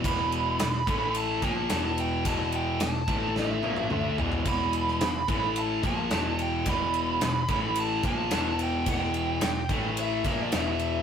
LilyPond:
<<
  \new Staff \with { instrumentName = "Lead electric guitar" } { \time 4/4 \key e \minor \tempo 4 = 109 b''2 a''8 a''4 g''8 | a''8 g''8 a''4 e''4. r8 | b''2 a''8 a''4 g''8 | b''2 a''8 a''4 g''8 |
g''2 e''8 e''16 d''16 e''4 | }
  \new Staff \with { instrumentName = "Distorted electric guitar" } { \clef bass \time 4/4 \key e \minor <e, b, e>4 <e, b,>8 <a, e a>4 <ais, f ais>8 <b, e>4 | <e, b, e>4 <e, b,>8 <a, e a>4 <ais, f ais>8 <d a d'>8 <e, b, e>8 | <e, b, e>4 <e, b,>8 <a, e a>4 <ais, f ais>8 <e, b, e>4 | <e, b, e>4 <e, b,>8 <a, e a>4 <ais, f ais>8 <e, b, e>4 |
<e, b, e>4 <e, b,>8 <a, e a>4 <ais, f ais>8 <e, e>4 | }
  \new Staff \with { instrumentName = "Overdriven electric guitar" } { \clef bass \time 4/4 \key e \minor <e, b, e>4 <e, b,>8 <a, e a>4 <ais, f ais>8 <e, b, e>4 | <e, b, e>4 <e, b,>8 <a, e a>4 <ais, f ais>8 <d a d'>8 <e, b, e>8 | <e, b, e>4 <e, b,>8 <a, e a>4 <ais, f ais>8 <e, b, e>4 | <e, b, e>4 <e, b,>8 <a, e a>4 <ais, f ais>8 <e, b, e>4 |
<e, b, e>4 <e, b,>8 <a, e a>4 <ais, f ais>8 <e, b, e>4 | }
  \new Staff \with { instrumentName = "Picked electric bass" } { \clef bass \time 4/4 \key e \minor e,,4 e,,8 a,,4 ais,,8 e,,4 | e,,4 e,,8 a,,4 ais,,8 d,8 e,,8 | e,,4 e,,8 a,,4 ais,,8 e,,4 | e,,4 e,,8 a,,4 ais,,8 e,,4 |
e,,4 e,,8 a,,4 ais,,8 e,,4 | }
  \new DrumStaff \with { instrumentName = "Drums" } \drummode { \time 4/4 <bd cymr>8 cymr8 <cymr sn>8 <bd cymr>8 cymr8 <bd cymr>8 <cymr sn>8 cymr8 | <bd cymr>8 cymr8 <cymr sn>8 <bd cymr>8 sn8 tommh16 tommh16 toml8 tomfh16 tomfh16 | <bd cymr>8 cymr16 sn16 <cymr sn>8 <bd cymr>8 cymr8 <bd cymr>8 <cymr sn>8 cymr8 | <bd cymr>8 cymr8 <cymr sn>8 <bd cymr>8 cymr8 <bd cymr>8 <cymr sn>8 cymr8 |
<bd cymr>8 cymr8 <cymr sn>8 <bd cymr>8 cymr8 <bd cymr>8 <cymr sn>8 cymr8 | }
>>